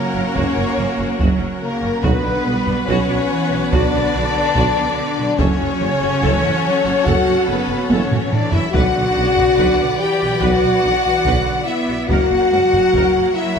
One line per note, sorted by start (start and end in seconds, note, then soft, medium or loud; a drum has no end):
0.00 0.36 F#3 medium
0.00 0.34 A#3 loud
0.00 2.04 C#4 medium
0.00 2.00 F#4 medium
0.00 0.34 A#4 medium
0.00 0.35 A#4 medium
0.00 2.04 A#4 medium
0.00 2.00 C#5 medium
0.00 2.00 F#5 medium
0.13 0.23 F#1 medium
0.13 0.21 C#4 medium
0.35 0.45 F#1 medium
0.35 0.44 F#1 medium
0.35 1.20 A#3 medium
0.35 1.19 C#4 medium
0.35 0.55 F#4 medium
0.35 1.20 C#5 medium
0.35 1.21 C#5 medium
0.35 taiko medium
0.56 0.65 F#1 medium
0.56 0.64 C#4 medium
0.77 0.86 F#1 medium
0.77 0.85 A#3 medium
0.98 1.07 F#1 medium
0.98 1.06 C#4 medium
1.18 1.27 F#1 medium
1.18 1.28 F#1 medium
1.18 1.61 F#3 medium
1.18 1.38 F#4 medium
1.18 taiko medium
1.37 1.48 F#1 medium
1.37 1.45 C#4 medium
1.61 2.03 C#3 medium
1.61 2.01 A#3 medium
1.61 2.00 A#4 medium
1.61 2.01 A#4 medium
1.81 1.91 F#1 medium
1.81 1.89 C#4 medium
2.03 2.11 B1 medium
2.03 2.13 B1 loud
2.03 2.46 D3 medium
2.03 2.87 B3 loud
2.03 5.39 B3 loud
2.03 2.23 F#4 medium
2.03 5.35 F#4 medium
2.03 2.87 B4 medium
2.03 5.38 B4 medium
2.03 2.87 B4 medium
2.03 2.86 B4 loud
2.03 5.39 B4 medium
2.03 5.35 F#5 medium
2.03 taiko loud
2.24 2.32 B1 medium
2.24 2.32 D4 medium
2.45 2.53 B1 medium
2.45 2.55 B1 medium
2.45 2.88 G3 medium
2.45 2.53 B3 medium
2.65 2.75 B1 medium
2.65 2.73 D4 medium
2.65 taiko low medium
2.86 2.94 B1 medium
2.86 2.97 B1 loud
2.86 3.30 F#3 medium
2.86 3.71 C#4 loud
2.86 3.08 F#4 loud
2.86 3.71 C#5 medium
2.86 taiko medium
3.08 3.16 B1 medium
3.08 3.17 D4 medium
3.30 3.71 E3 medium
3.51 3.59 B1 medium
3.51 3.59 D4 medium
3.70 3.80 B1 medium
3.70 3.81 B1 loud
3.70 5.35 D3 medium
3.70 5.38 D4 loud
3.70 3.92 F#4 medium
3.70 5.34 D5 loud
3.70 5.11 D5 loud
3.70 5.35 D5 loud
3.70 taiko medium
3.94 4.02 B1 medium
3.94 4.02 D4 medium
4.14 4.22 B1 medium
4.14 4.23 B1 medium
4.14 4.22 B3 medium
4.34 4.42 B1 medium
4.34 4.43 D4 medium
4.55 4.64 B1 medium
4.55 4.75 F#4 medium
4.55 taiko medium
4.76 4.86 B1 medium
4.76 4.84 D4 medium
5.18 5.27 B1 medium
5.18 5.26 D4 medium
5.37 5.47 F#1 medium
5.37 5.48 F#1 loud
5.37 5.81 F#3 medium
5.37 7.05 C#4 loud
5.37 8.73 C#4 loud
5.37 8.69 F#4 loud
5.37 8.73 A4 loud
5.37 5.58 A4 medium
5.37 7.02 C#5 loud
5.37 7.03 C#5 loud
5.37 8.70 C#5 medium
5.37 7.03 C#5 loud
5.37 8.69 F#5 loud
5.37 taiko loud
5.59 5.68 F#1 medium
5.59 5.67 F#4 medium
5.81 5.89 F#1 medium
5.81 5.90 F#1 medium
5.81 6.22 C#3 medium
5.81 5.89 C#4 medium
6.02 6.10 F#1 medium
6.02 6.10 F#4 medium
6.02 taiko low medium
6.22 6.31 F#1 loud
6.22 6.31 F#1 medium
6.22 6.64 E3 medium
6.22 6.42 A4 loud
6.22 taiko medium
6.43 6.52 F#1 medium
6.43 6.51 F#4 medium
6.65 7.90 F#3 medium
6.85 6.94 F#1 medium
6.85 6.93 F#4 medium
7.05 7.14 F#1 medium
7.05 7.15 F#1 loud
7.05 7.47 F#4 loud
7.05 7.26 A4 medium
7.05 7.48 F#5 loud
7.05 taiko medium
7.27 7.35 F#1 medium
7.27 7.35 F#4 medium
7.47 7.57 F#1 medium
7.47 7.58 F#1 medium
7.47 7.88 B3 loud
7.47 7.55 C#4 medium
7.47 7.88 B4 loud
7.47 7.89 B4 medium
7.47 7.90 B4 medium
7.69 7.77 F#1 medium
7.69 7.78 F#4 medium
7.88 7.99 F#1 loud
7.88 8.00 F#1 medium
7.88 8.72 E3 medium
7.88 8.32 C#4 medium
7.88 8.09 A4 medium
7.88 8.30 C#5 medium
7.88 8.31 C#5 medium
7.88 taiko high medium
8.11 8.20 F#1 medium
8.11 8.19 F#4 medium
8.11 taiko low-mid medium
8.30 8.52 D4 loud
8.30 8.52 D5 medium
8.30 8.53 D5 medium
8.30 taiko low-mid medium
8.52 8.61 F#1 medium
8.52 8.73 E4 loud
8.52 8.61 F#4 medium
8.52 8.73 E5 medium
8.52 8.74 E5 medium
8.52 taiko low medium
8.71 8.82 B1 medium
8.71 9.95 B2 medium
8.71 9.15 D3 medium
8.71 9.82 F#4 loud
8.71 8.93 B4 medium
8.71 12.09 B4 loud
8.71 12.89 D5 medium
8.71 12.10 D5 loud
8.71 9.97 F#5 loud
8.71 taiko loud
8.75 8.83 B1 loud
8.75 10.01 F#5 loud
8.93 9.04 B1 medium
8.93 9.01 F#4 medium
9.14 9.24 B1 medium
9.14 9.26 B1 medium
9.14 9.58 C#3 medium
9.14 9.22 D4 medium
9.36 9.46 B1 medium
9.36 9.44 F#4 medium
9.36 taiko low soft
9.57 9.66 B1 medium
9.57 9.68 B1 medium
9.57 9.99 D3 medium
9.57 9.77 B4 medium
9.57 taiko medium
9.78 9.89 B1 medium
9.78 9.86 F#4 medium
9.99 10.41 E3 medium
9.99 10.40 G4 loud
9.99 10.41 G5 loud
9.99 10.40 G5 medium
9.99 10.41 G5 medium
10.20 10.31 B1 medium
10.20 10.28 F#4 medium
10.39 10.50 B1 medium
10.39 10.83 F#3 medium
10.39 11.66 F#4 loud
10.39 10.60 B4 medium
10.39 11.67 F#5 loud
10.39 11.68 F#5 loud
10.39 taiko medium
10.43 10.51 B1 medium
10.43 11.68 F#5 loud
10.62 10.72 B1 medium
10.62 10.70 F#4 medium
10.84 10.92 B1 medium
10.84 10.93 B1 medium
10.84 11.25 E3 medium
10.84 10.92 D4 medium
11.05 11.14 B1 medium
11.05 11.13 F#4 medium
11.25 11.34 B1 medium
11.25 11.67 D3 medium
11.25 11.45 B4 medium
11.25 taiko medium
11.47 11.55 B1 medium
11.47 11.55 F#4 medium
11.65 12.09 B3 medium
11.65 12.07 E4 loud
11.65 12.09 E5 medium
11.65 12.10 E5 medium
11.88 11.97 B1 medium
11.88 11.96 F#4 medium
12.08 12.18 F#1 medium
12.08 13.59 A#3 medium
12.08 12.52 A#3 medium
12.08 13.35 F#4 loud
12.08 13.59 F#4 medium
12.08 13.59 A#4 medium
12.08 12.30 A#4 medium
12.08 13.32 F#5 medium
12.08 13.12 F#5 loud
12.08 13.33 F#5 loud
12.08 13.59 F#5 medium
12.08 taiko medium
12.31 12.39 F#1 medium
12.31 12.39 F#4 medium
12.52 12.60 F#1 medium
12.52 12.61 F#1 medium
12.52 13.59 F#3 medium
12.52 12.61 C#4 medium
12.73 12.82 F#1 medium
12.73 12.83 F#4 medium
12.73 taiko low soft
12.94 13.02 F#1 medium
12.94 13.14 A#4 medium
12.94 13.59 C#5 medium
12.94 taiko medium
13.16 13.24 F#1 medium
13.16 13.24 F#4 medium
13.33 13.59 E4 medium
13.33 13.59 E5 medium